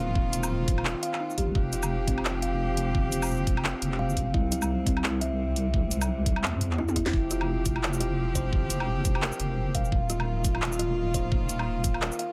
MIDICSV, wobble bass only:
0, 0, Header, 1, 2, 480
1, 0, Start_track
1, 0, Tempo, 348837
1, 215, Time_signature, 4, 2, 24, 8
1, 16956, End_track
2, 0, Start_track
2, 0, Title_t, "Wobble bass"
2, 0, Program_c, 0, 39
2, 0, Note_on_c, 0, 27, 102
2, 200, Note_off_c, 0, 27, 0
2, 215, Note_on_c, 0, 27, 98
2, 439, Note_off_c, 0, 27, 0
2, 456, Note_on_c, 0, 27, 95
2, 1297, Note_off_c, 0, 27, 0
2, 1894, Note_on_c, 0, 34, 88
2, 2118, Note_off_c, 0, 34, 0
2, 2137, Note_on_c, 0, 29, 98
2, 4043, Note_off_c, 0, 29, 0
2, 4055, Note_on_c, 0, 29, 100
2, 4279, Note_off_c, 0, 29, 0
2, 4301, Note_on_c, 0, 29, 99
2, 5139, Note_off_c, 0, 29, 0
2, 5255, Note_on_c, 0, 29, 88
2, 5962, Note_off_c, 0, 29, 0
2, 5975, Note_on_c, 0, 36, 101
2, 7882, Note_off_c, 0, 36, 0
2, 7895, Note_on_c, 0, 36, 100
2, 8119, Note_off_c, 0, 36, 0
2, 8136, Note_on_c, 0, 36, 96
2, 8855, Note_on_c, 0, 40, 82
2, 8875, Note_off_c, 0, 36, 0
2, 9078, Note_off_c, 0, 40, 0
2, 9095, Note_on_c, 0, 40, 87
2, 9802, Note_off_c, 0, 40, 0
2, 9818, Note_on_c, 0, 29, 98
2, 11723, Note_off_c, 0, 29, 0
2, 11733, Note_on_c, 0, 29, 98
2, 11958, Note_off_c, 0, 29, 0
2, 11974, Note_on_c, 0, 29, 94
2, 12816, Note_off_c, 0, 29, 0
2, 12930, Note_on_c, 0, 29, 89
2, 13639, Note_off_c, 0, 29, 0
2, 13652, Note_on_c, 0, 27, 99
2, 15560, Note_off_c, 0, 27, 0
2, 15575, Note_on_c, 0, 27, 102
2, 15799, Note_off_c, 0, 27, 0
2, 15816, Note_on_c, 0, 27, 97
2, 16656, Note_off_c, 0, 27, 0
2, 16956, End_track
0, 0, End_of_file